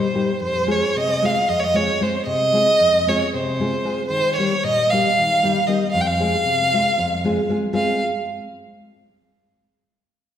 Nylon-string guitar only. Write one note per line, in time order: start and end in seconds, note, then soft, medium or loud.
0.14 0.29 G3 medium
0.14 0.30 A#3 soft
0.14 0.30 D#4 medium
0.14 0.30 G4 medium
0.40 0.81 F2 medium
0.67 0.83 G#3 medium
0.67 0.83 C4 medium
0.67 0.83 F4 medium
0.67 0.83 G#4 medium
0.96 1.36 C3 medium
1.22 1.37 G#3 medium
1.22 1.37 C4 medium
1.22 1.38 F4 medium
1.22 1.38 G#4 medium
1.49 1.87 F2 medium
1.74 1.89 G#3 medium
1.74 1.89 C4 medium
1.74 1.90 F4 medium
1.74 1.90 G#4 medium
2.01 2.15 G#3 medium
2.01 2.15 C4 medium
2.01 2.15 F4 soft
2.01 2.15 G#4 medium
2.26 2.66 C3 medium
2.53 2.68 G#3 medium
2.53 2.68 C4 medium
2.53 2.68 F4 medium
2.53 2.69 G#4 medium
2.80 3.20 F2 medium
3.07 3.22 G#3 medium
3.07 3.22 C4 medium
3.07 3.22 F4 medium
3.07 3.23 G#4 medium
3.34 3.72 C3 medium
3.60 3.74 G#3 medium
3.60 3.74 C4 medium
3.60 3.75 F4 medium
3.60 3.74 G#4 medium
3.84 3.99 G#3 medium
3.84 3.98 C4 medium
3.84 3.99 F4 medium
3.84 3.99 G#4 medium
4.10 4.50 D#3 medium
4.38 4.52 G3 medium
4.38 4.52 A#3 medium
4.38 4.53 D#4 medium
4.38 4.53 G4 medium
4.64 5.03 A#2 medium
4.92 5.06 G3 medium
4.92 5.06 A#3 medium
4.92 5.06 D#4 medium
4.92 5.07 G4 medium
5.18 5.56 D#3 medium
5.43 5.57 G3 medium
5.43 5.58 A#3 medium
5.43 5.58 D#4 medium
5.43 5.58 G4 medium
5.68 5.82 G3 medium
5.68 5.82 A#3 medium
5.68 5.83 D#4 medium
5.68 5.83 G4 medium
5.94 6.34 F2 medium
6.19 6.35 G#3 medium
6.19 6.35 C4 medium
6.19 6.35 F4 medium
6.19 6.35 G#4 medium
6.45 6.86 C3 medium
6.73 6.88 G#3 medium
6.73 6.89 C4 medium
6.73 6.89 F4 medium
6.73 6.89 G#4 medium
6.98 7.38 F2 medium
7.24 7.40 G#3 medium
7.24 7.40 C4 medium
7.24 7.40 F4 medium
7.24 7.40 G#4 medium
7.49 7.64 G#3 medium
7.49 7.65 C4 medium
7.49 7.65 F4 medium
7.49 7.65 G#4 medium
7.73 8.01 G#3 medium
7.73 8.01 C4 medium
7.73 8.01 F4 medium
7.73 8.01 G#4 medium